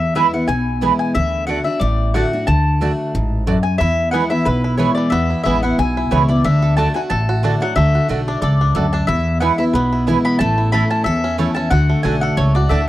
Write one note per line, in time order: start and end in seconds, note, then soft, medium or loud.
0.00 0.25 E2 medium
0.00 0.46 E2 medium
0.00 0.14 E5 loud
0.15 0.33 E3 medium
0.15 0.33 G#3 medium
0.15 0.25 B3 medium
0.15 0.33 B3 medium
0.15 0.26 E4 medium
0.15 0.32 E4 medium
0.15 0.26 B4 loud
0.15 0.33 E5 medium
0.15 0.26 G#5 medium
0.33 0.49 B3 soft
0.33 0.48 E4 medium
0.33 0.47 F#5 medium
0.48 0.90 B1 medium
0.48 1.12 B2 medium
0.48 0.96 G#5 loud
0.81 1.14 E3 medium
0.81 1.14 G#3 medium
0.81 0.92 B3 medium
0.81 1.14 B3 medium
0.81 0.92 E4 medium
0.81 1.14 E4 medium
0.81 0.92 B4 medium
0.81 0.92 G#5 medium
0.99 1.14 G#5 medium
1.15 1.57 D2 medium
1.15 1.46 D3 medium
1.15 1.46 E5 loud
1.47 1.65 D3 medium
1.47 1.65 A3 medium
1.47 1.58 A3 medium
1.47 1.66 D4 medium
1.47 1.64 F#4 medium
1.47 1.58 F#4 medium
1.47 1.59 D5 loud
1.47 1.64 F#5 medium
1.47 1.59 A5 medium
1.64 1.81 D4 medium
1.64 1.80 F#4 medium
1.64 1.80 E5 medium
1.80 2.23 A1 medium
1.80 2.45 A2 medium
1.80 2.11 D5 loud
2.14 2.32 D3 medium
2.14 2.24 A3 medium
2.14 2.32 A3 medium
2.14 2.32 D4 medium
2.14 2.25 F#4 loud
2.14 2.32 F#4 medium
2.14 2.25 D5 medium
2.14 2.47 F#5 medium
2.14 2.25 A5 loud
2.33 2.48 D4 soft
2.33 2.48 F#4 medium
2.47 2.89 D2 medium
2.47 2.80 D3 medium
2.47 3.43 A5 loud
2.81 3.13 D3 medium
2.81 2.91 A3 medium
2.81 3.13 A3 medium
2.81 3.13 D4 medium
2.81 2.91 F#4 medium
2.81 3.14 F#4 medium
2.81 2.91 D5 medium
2.81 2.91 A5 medium
3.15 3.56 A1 medium
3.15 3.46 G#2 medium
3.47 3.79 F#2 medium
3.47 3.57 A3 medium
3.47 3.57 F#4 medium
3.47 3.57 D5 medium
3.47 3.57 A5 medium
3.63 3.78 G#5 medium
3.78 4.22 E2 medium
3.78 4.44 E2 medium
3.78 4.31 E4 medium
3.78 4.11 E5 loud
4.11 4.30 E3 medium
4.11 4.31 G#3 medium
4.11 4.23 B3 medium
4.11 4.61 B3 medium
4.11 4.30 B3 medium
4.11 4.23 E4 medium
4.11 4.29 E4 medium
4.11 4.23 B4 medium
4.11 4.30 F#5 medium
4.11 4.23 G#5 loud
4.30 4.46 B3 soft
4.30 4.46 E4 medium
4.30 4.45 E4 medium
4.30 4.46 E5 medium
4.45 4.88 B1 medium
4.45 5.09 B2 medium
4.45 4.63 E4 medium
4.45 4.77 B4 loud
4.64 4.78 E4 medium
4.78 5.11 E3 medium
4.78 5.11 G#3 medium
4.78 4.89 B3 medium
4.78 5.11 B3 medium
4.78 5.27 E4 soft
4.78 4.89 E4 medium
4.78 5.11 E4 medium
4.78 4.89 B4 loud
4.78 4.94 C#5 medium
4.78 4.90 G#5 loud
4.95 5.43 E3 medium
4.95 5.12 D5 medium
5.10 5.33 E2 medium
5.10 5.75 E2 medium
5.10 5.44 B3 medium
5.10 5.42 E5 loud
5.30 5.63 E4 medium
5.43 5.73 A1 medium
5.43 5.62 E3 medium
5.43 5.63 G#3 medium
5.43 5.55 B3 medium
5.43 5.93 B3 medium
5.43 5.63 B3 medium
5.43 5.55 E4 medium
5.43 5.62 E4 medium
5.43 5.56 B4 medium
5.43 5.61 E5 loud
5.43 5.56 G#5 medium
5.63 5.79 B3 medium
5.63 5.78 E4 medium
5.63 5.78 F#5 medium
5.78 6.06 B1 medium
5.78 6.42 B2 medium
5.78 5.96 E4 medium
5.78 6.13 G#5 loud
5.97 6.11 E4 medium
6.11 6.40 C#2 medium
6.11 6.28 E3 medium
6.11 6.29 G#3 medium
6.11 6.21 B3 medium
6.11 6.29 B3 medium
6.11 6.21 E4 medium
6.11 6.28 E4 medium
6.11 6.21 B4 loud
6.11 6.28 C#5 medium
6.11 6.22 G#5 loud
6.28 6.45 B3 soft
6.28 6.44 E4 medium
6.28 6.43 D5 medium
6.44 6.86 D2 medium
6.44 6.76 D3 loud
6.44 7.44 D4 medium
6.44 6.76 E5 loud
6.62 7.11 A4 medium
6.77 6.95 D3 medium
6.77 6.87 A3 medium
6.77 6.95 A3 medium
6.77 7.25 A3 medium
6.77 6.95 D4 medium
6.77 6.87 F#4 medium
6.77 6.94 F#4 medium
6.77 6.88 D5 loud
6.77 6.94 A5 loud
6.77 6.88 A5 loud
6.94 7.11 D4 soft
6.94 7.10 F#4 medium
6.94 7.28 F#4 medium
6.94 6.99 G#5 medium
7.10 7.52 A1 medium
7.10 7.73 A2 medium
7.10 7.58 A4 medium
7.10 7.61 A5 loud
7.29 7.74 F#4 medium
7.43 7.60 D3 medium
7.43 7.53 A3 medium
7.43 7.61 A3 medium
7.43 7.61 D4 medium
7.43 7.91 D4 medium
7.43 7.54 F#4 medium
7.43 7.59 F#4 medium
7.43 7.54 D5 medium
7.43 7.54 A5 loud
7.60 8.07 F#3 medium
7.60 7.76 D4 medium
7.60 7.76 F#4 medium
7.60 7.75 F#5 loud
7.76 7.97 D2 medium
7.76 8.07 D3 loud
7.76 8.09 A3 medium
7.76 8.07 E5 loud
7.95 8.40 F#4 medium
8.08 8.37 B1 medium
8.08 8.40 D3 medium
8.08 8.41 A3 medium
8.08 8.19 A3 medium
8.08 8.57 A3 medium
8.08 8.41 D4 medium
8.08 8.19 F#4 medium
8.08 8.41 F#4 medium
8.08 8.20 D5 medium
8.08 8.20 A5 loud
8.28 8.60 D4 medium
8.28 8.40 D5 medium
8.42 8.70 C#2 medium
8.42 8.74 G#2 medium
8.42 8.75 A4 medium
8.42 8.94 D5 loud
8.61 8.92 D4 medium
8.75 9.03 D2 medium
8.75 9.07 F#2 medium
8.75 8.85 A3 medium
8.75 8.85 F#4 medium
8.75 9.09 A4 medium
8.75 8.86 D5 medium
8.75 8.86 A5 loud
8.93 9.09 D4 medium
8.93 9.07 A5 loud
9.07 9.49 E2 medium
9.07 9.71 E2 loud
9.07 9.42 E4 medium
9.07 9.40 E5 loud
9.40 9.58 E3 medium
9.40 9.59 G#3 medium
9.40 9.51 B3 medium
9.40 9.59 B3 medium
9.40 9.51 E4 medium
9.40 9.59 E4 medium
9.40 9.57 E4 medium
9.40 9.51 B4 medium
9.40 9.58 F#5 medium
9.40 9.51 G#5 medium
9.58 9.74 B3 medium
9.58 9.73 E4 medium
9.58 9.91 E4 medium
9.58 9.63 E5 medium
9.73 10.15 B1 medium
9.73 10.37 B2 medium
9.73 10.22 B3 medium
9.73 10.04 B4 medium
9.93 10.07 E4 medium
10.07 10.39 E3 medium
10.07 10.39 G#3 medium
10.07 10.17 B3 medium
10.07 10.39 B3 medium
10.07 10.17 E4 medium
10.07 10.40 E4 medium
10.07 10.17 B4 medium
10.07 10.17 G#5 loud
10.25 10.40 B3 medium
10.25 10.38 B5 loud
10.39 10.82 A1 medium
10.39 11.03 A2 loud
10.39 10.73 A3 medium
10.39 10.72 A5 loud
10.58 11.03 E4 medium
10.72 11.05 E3 medium
10.72 10.83 A3 medium
10.72 11.20 A3 medium
10.72 11.05 A3 medium
10.72 11.05 C#4 medium
10.72 10.83 E4 medium
10.72 11.05 E4 medium
10.72 10.83 C#5 loud
10.72 10.83 A5 medium
10.72 10.90 B5 loud
10.90 11.23 C#4 medium
10.90 11.04 A5 medium
11.04 11.47 E2 medium
11.04 11.69 E2 medium
11.04 11.38 A4 medium
11.04 11.36 E5 loud
11.24 11.55 C#4 medium
11.38 11.56 E3 medium
11.38 11.48 A3 medium
11.38 11.56 A3 medium
11.38 11.56 C#4 medium
11.38 11.48 E4 loud
11.38 11.55 E4 medium
11.38 11.72 A4 medium
11.38 11.49 C#5 loud
11.38 11.49 A5 medium
11.55 11.72 C#4 medium
11.55 11.72 C#4 soft
11.55 11.71 E4 medium
11.55 11.70 A5 medium
11.70 11.92 D2 medium
11.70 12.02 D3 loud
11.70 12.19 F#4 medium
11.70 12.02 F#5 loud
11.90 12.35 A3 medium
12.03 12.32 B1 medium
12.03 12.36 D3 medium
12.03 12.14 A3 medium
12.03 12.36 A3 medium
12.03 12.52 D4 medium
12.03 12.36 D4 medium
12.03 12.14 F#4 medium
12.03 12.36 F#4 medium
12.03 12.14 D5 medium
12.03 12.20 G#5 loud
12.03 12.15 A5 loud
12.21 12.68 A4 medium
12.21 12.38 F#5 medium
12.37 12.65 C#2 medium
12.37 12.89 A2 medium
12.37 12.85 A3 medium
12.37 12.54 C#5 loud
12.55 12.89 F#4 medium
12.55 12.71 D5 medium
12.69 12.89 D2 medium
12.69 12.89 D3 medium
12.69 12.80 A3 medium
12.69 12.89 A3 medium
12.69 12.89 D4 medium
12.69 12.80 F#4 medium
12.69 12.89 F#4 medium
12.69 12.89 A4 medium
12.69 12.80 D5 loud
12.69 12.86 E5 medium
12.69 12.80 A5 medium